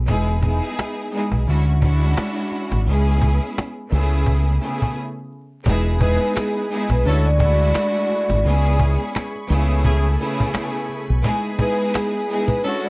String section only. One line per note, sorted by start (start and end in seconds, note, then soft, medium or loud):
0.06 0.38 G#3 medium
0.06 0.39 B3 medium
0.06 0.40 D#4 medium
0.06 0.40 E4 medium
0.06 0.41 G#4 loud
0.40 1.06 G#3 loud
0.40 1.07 B3 medium
0.40 1.07 D#4 medium
0.40 1.07 E4 medium
0.40 1.08 G#4 loud
1.11 1.45 G#3 loud
1.11 1.47 B3 medium
1.11 1.48 D#4 medium
1.11 1.48 E4 medium
1.11 1.48 G#4 loud
1.47 1.69 G#3 loud
1.47 1.70 C#4 medium
1.47 1.70 D4 medium
1.47 1.70 E4 medium
1.47 1.71 F#4 loud
1.79 2.78 G#3 loud
1.79 2.79 C#4 medium
1.79 2.79 D4 loud
1.79 2.80 E4 loud
1.79 2.80 F#4 loud
2.85 3.68 G#3 loud
2.85 3.68 B3 medium
2.85 3.69 C#4 medium
2.85 3.69 E4 medium
2.85 3.70 G#4 loud
3.89 4.55 C#3 medium
3.89 4.56 A3 medium
3.89 4.56 B3 medium
3.89 4.56 C#4 medium
3.89 4.57 E4 medium
3.89 4.57 G#4 loud
4.60 4.96 C#3 medium
4.60 4.96 A3 medium
4.60 4.96 B3 medium
4.60 4.96 C#4 medium
4.60 4.97 E4 medium
4.60 4.97 G#4 loud
5.64 5.97 G#3 loud
5.64 5.98 B3 medium
5.64 5.98 D#4 medium
5.64 5.99 E4 medium
5.64 5.99 G#4 loud
5.98 6.65 G#3 loud
5.98 6.65 B3 loud
5.98 6.65 D#4 medium
5.98 6.66 E4 medium
5.98 6.66 G#4 loud
6.69 7.03 G#3 loud
6.69 7.05 B3 medium
6.69 7.06 D#4 medium
6.69 7.05 E4 medium
6.69 7.06 G#4 loud
7.04 7.27 G#3 loud
7.04 7.28 C#4 medium
7.04 7.28 D4 medium
7.04 7.28 E4 medium
7.04 7.29 F#4 loud
7.37 8.36 G#3 loud
7.37 8.37 A3 medium
7.37 8.37 D4 loud
7.37 8.38 E4 loud
7.37 8.38 F#4 loud
8.43 9.26 G#3 loud
8.43 9.27 B3 loud
8.43 9.27 C#4 loud
8.43 9.27 E4 medium
8.43 9.28 G#4 loud
9.47 10.13 C#3 loud
9.47 10.14 A3 medium
9.47 10.14 B3 medium
9.47 10.14 C#4 medium
9.47 10.15 E4 loud
9.47 10.15 G#4 loud
10.18 11.01 C#3 loud
10.18 11.01 A3 medium
10.18 11.01 B3 medium
10.18 11.02 C#4 medium
10.18 11.02 E4 medium
10.18 11.02 G#4 loud
11.22 11.55 G#3 loud
11.22 11.56 B3 loud
11.22 11.56 D#4 medium
11.22 11.57 E4 medium
11.22 11.57 G#4 loud
11.56 12.23 G#3 loud
11.56 12.23 B3 medium
11.56 12.23 D#4 medium
11.56 12.24 E4 medium
11.56 12.24 G#4 loud
12.28 12.62 G#3 loud
12.28 12.63 B3 medium
12.28 12.64 D#4 medium
12.28 12.64 E4 medium
12.28 12.65 G#4 loud
12.63 12.86 G#3 loud
12.63 12.86 C#4 medium
12.63 12.86 D4 medium
12.63 12.87 E4 medium
12.63 12.87 F#4 loud